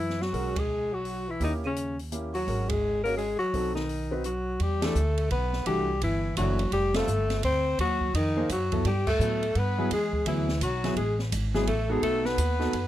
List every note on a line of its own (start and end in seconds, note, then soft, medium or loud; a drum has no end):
0.00 0.29 F#2 medium
0.00 0.23 E3 medium
0.00 0.24 E4 medium
0.10 snare soft
0.21 0.59 F#3 medium
0.21 0.61 F#4 medium
0.21 snare soft
0.33 1.36 B1 medium
0.33 0.53 G#3 medium
0.33 0.54 C#4 soft
0.33 0.54 F#4 soft
0.33 0.54 A#4 medium
0.33 kick soft
0.33 open hi-hat soft
0.56 0.94 G#3 medium
0.56 0.96 G#4 medium
0.56 kick medium
0.56 ride medium
0.93 1.30 F#3 medium
0.93 1.32 F#4 medium
1.05 open hi-hat soft
1.28 1.41 E3 medium
1.28 1.42 E4 medium
1.40 2.43 D#2 medium
1.40 1.52 D#3 medium
1.40 1.61 A#3 medium
1.40 1.61 C#4 soft
1.40 1.53 D#4 medium
1.40 1.61 E4 soft
1.40 1.61 G4 medium
1.40 kick soft
1.40 open hi-hat soft
1.64 1.97 C#3 medium
1.64 1.98 C#4 medium
1.76 closed hi-hat soft
1.99 open hi-hat soft
2.12 2.32 A#3 soft
2.12 2.32 C#4 soft
2.12 2.32 E4 soft
2.12 2.32 G4 medium
2.12 closed hi-hat soft
2.34 2.70 F#3 medium
2.34 2.71 F#4 medium
2.34 open hi-hat soft
2.47 3.37 G#1 medium
2.47 2.68 G#3 medium
2.47 2.68 C#4 soft
2.47 2.68 F#4 soft
2.47 2.68 A#4 medium
2.47 kick soft
2.47 open hi-hat soft
2.69 3.04 G#3 medium
2.69 3.03 G#4 medium
2.69 kick medium
2.69 ride medium
3.04 3.17 G#3 medium
3.04 3.17 A#3 medium
3.04 3.17 C#4 medium
3.04 3.17 F#4 medium
3.04 3.16 A#4 medium
3.04 3.17 C#5 medium
3.04 open hi-hat soft
3.17 3.39 G#3 medium
3.17 3.38 G#4 medium
3.17 open hi-hat soft
3.39 3.73 F#3 medium
3.39 3.73 F#4 medium
3.39 muted upright bass stroke soft
3.53 4.56 B1 medium
3.53 3.74 C4 medium
3.53 3.74 D#4 soft
3.53 3.74 F#4 medium
3.53 3.75 A4 medium
3.53 kick soft
3.53 open hi-hat soft
3.75 4.21 D#3 medium
3.75 4.21 D#4 medium
3.75 snare soft
3.89 open hi-hat soft
4.11 4.23 C4 medium
4.11 4.24 D#4 soft
4.11 4.24 F#4 medium
4.11 4.24 B4 medium
4.24 4.62 F#3 medium
4.24 4.64 F#4 medium
4.24 closed hi-hat soft
4.59 4.94 E2 medium
4.59 4.85 G3 medium
4.59 4.86 G4 loud
4.59 kick soft
4.59 ride soft
4.81 4.94 E3 medium
4.81 4.94 A3 medium
4.81 5.31 A3 medium
4.81 4.94 D4 medium
4.81 4.94 G4 medium
4.81 5.31 A4 medium
4.81 snare medium
4.81 ride medium
4.95 5.30 D2 medium
4.95 hi-hat pedal medium
5.18 ride soft
5.30 5.65 B1 medium
5.30 5.64 B3 medium
5.30 5.64 B4 medium
5.30 kick soft
5.30 ride soft
5.53 snare soft
5.66 6.01 C2 medium
5.66 5.87 E3 medium
5.66 6.00 G3 medium
5.66 5.86 A3 medium
5.66 5.87 D4 medium
5.66 5.87 F#4 medium
5.66 5.99 G4 loud
5.66 kick soft
5.66 ride medium
6.01 6.36 G1 medium
6.01 6.35 E3 medium
6.01 6.36 E4 medium
6.01 kick soft
6.01 ride medium
6.37 6.71 F#1 medium
6.37 6.58 E3 medium
6.37 6.71 F#3 medium
6.37 6.58 A3 soft
6.37 6.58 D4 medium
6.37 6.58 E4 medium
6.37 6.70 F#4 medium
6.37 kick soft
6.37 hi-hat pedal soft
6.37 ride medium
6.59 ride soft
6.72 7.06 F1 medium
6.72 6.97 G3 medium
6.72 6.96 G4 loud
6.72 kick soft
6.72 ride medium
6.94 7.07 G3 medium
6.94 7.44 A3 medium
6.94 7.07 C4 medium
6.94 7.07 F4 medium
6.94 7.43 A4 loud
6.94 7.07 A4 medium
6.94 snare medium
6.94 ride medium
7.07 7.42 G1 medium
7.07 hi-hat pedal medium
7.30 snare soft
7.30 ride soft
7.43 7.78 D2 medium
7.43 7.77 C4 medium
7.43 7.77 C5 loud
7.43 kick soft
7.43 ride medium
7.79 8.13 D#2 medium
7.79 8.13 F#3 medium
7.79 8.13 F#4 loud
7.79 kick soft
7.79 ride medium
8.01 kick soft
8.14 8.48 F2 medium
8.14 8.48 D#3 medium
8.14 8.48 D#4 medium
8.14 kick soft
8.14 ride medium
8.37 8.48 A#3 medium
8.37 8.48 D#4 medium
8.37 8.48 G#4 medium
8.37 8.49 C5 medium
8.49 8.84 F#2 medium
8.49 8.84 F#3 medium
8.49 8.84 F#4 medium
8.49 kick soft
8.49 hi-hat pedal soft
8.49 ride medium
8.72 8.84 F#3 medium
8.72 8.84 B3 medium
8.72 8.84 E4 medium
8.72 8.84 A4 medium
8.72 kick soft
8.72 ride soft
8.85 9.19 G2 medium
8.85 9.06 G3 medium
8.85 9.07 G4 loud
8.85 kick soft
8.85 ride medium
9.07 9.58 A3 medium
9.07 9.60 A4 medium
9.07 kick medium
9.07 crash medium
9.19 9.54 A2 medium
9.19 9.41 F#3 medium
9.19 9.41 B3 medium
9.19 9.41 E4 medium
9.19 9.41 A4 medium
9.19 hi-hat pedal medium
9.43 ride soft
9.55 9.90 G2 loud
9.55 9.92 B3 medium
9.55 9.92 B4 loud
9.55 kick soft
9.55 ride soft
9.78 9.90 F#3 medium
9.78 9.90 B3 medium
9.78 9.90 E4 medium
9.78 9.90 G#4 medium
9.91 10.25 E2 medium
9.91 10.25 G#3 medium
9.91 10.25 G#4 medium
9.91 kick soft
9.91 ride medium
10.13 kick medium
10.26 10.60 D2 medium
10.26 10.60 E3 medium
10.26 10.47 F#3 medium
10.26 10.47 B3 medium
10.26 10.47 E4 soft
10.26 10.60 E4 medium
10.26 10.47 G#4 medium
10.26 ride medium
10.49 snare medium
10.61 10.96 B1 medium
10.61 10.95 F#3 medium
10.61 10.95 F#4 medium
10.61 kick soft
10.61 hi-hat pedal soft
10.61 ride medium
10.84 10.96 F#3 medium
10.84 10.96 B3 medium
10.84 10.96 E4 medium
10.84 10.96 G#4 medium
10.84 snare soft
10.84 ride soft
10.96 11.31 A1 medium
10.96 11.18 G#3 medium
10.96 11.18 G#4 medium
10.96 kick soft
10.96 ride medium
11.19 snare soft
11.32 11.66 G#1 medium
11.32 kick soft
11.32 hi-hat pedal medium
11.32 ride medium
11.54 11.66 F#3 medium
11.54 11.67 G#3 medium
11.54 11.66 B3 medium
11.54 11.66 E4 medium
11.54 11.66 G#4 medium
11.54 11.67 G#4 medium
11.54 snare soft
11.67 12.02 A1 medium
11.67 11.91 A3 medium
11.67 11.92 A4 medium
11.67 kick soft
11.67 ride medium
11.89 12.02 G#3 medium
11.89 12.35 B3 medium
11.89 12.36 D#4 medium
11.89 12.36 F#4 medium
11.89 12.02 G#4 medium
11.89 12.36 A4 medium
12.02 12.37 B1 medium
12.02 12.28 A3 medium
12.02 12.27 A4 loud
12.02 kick soft
12.02 ride medium
12.25 12.88 B3 medium
12.25 12.88 B4 loud
12.25 snare soft
12.37 12.72 D#2 medium
12.37 kick soft
12.37 hi-hat pedal medium
12.37 ride medium
12.59 12.72 B3 medium
12.59 12.72 D#4 medium
12.59 12.72 F#4 medium
12.59 12.72 A4 medium
12.59 snare soft
12.73 12.88 F#2 medium
12.73 kick soft
12.73 ride medium